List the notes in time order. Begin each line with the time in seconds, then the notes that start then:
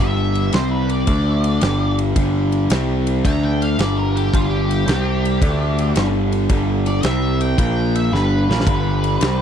0.00 G1 G2 D3 G3 E5
0.35 ride
0.53 C2 C3 G3 C4 C5, snare, ride
0.71 B4
0.89 D5, ride
1.07 D2 D3 A3 D4, kick, ride
1.44 ride
1.61 G1 G2 D3 G3, snare, ride
1.98 ride
2.16 G1 G2 D3 G3, kick, ride
2.52 ride
2.70 C2 C3 G3 C4, snare, ride
3.07 ride
3.25 D2 D3 A3 D4 A#5, kick, ride
3.44 G5
3.62 F5, ride
3.78 G1 G2 D3 G3 D5, snare, ride
3.98 A#4
4.16 G4, ride
4.33 G1 G2 D3 G3 F4, kick, ride
4.50 G4
4.71 ride
4.87 C2 C3 G3 C4, snare, ride
5.25 ride
5.41 D2 D3 A3 D4, kick, ride
5.78 ride
5.96 G1 G2 D3 G3, snare, ride
6.32 ride
6.49 G1 G2 D3 G3, kick, ride
6.86 D5, ride
7.03 C2 C3 G3 C4 E5, snare, ride
7.40 G5, ride
7.58 A#1 A#2 F3 A#3 G5, kick, ride
7.95 E5, ride
8.12 G1 G2 D3 G3 B4, snare
8.49 A#1 A#2 F3 A#3, snare
8.60 snare
8.66 G1 G2 D3 G3 B4, kick, ride
9.04 ride
9.20 C2 C3 G3 C4, snare, ride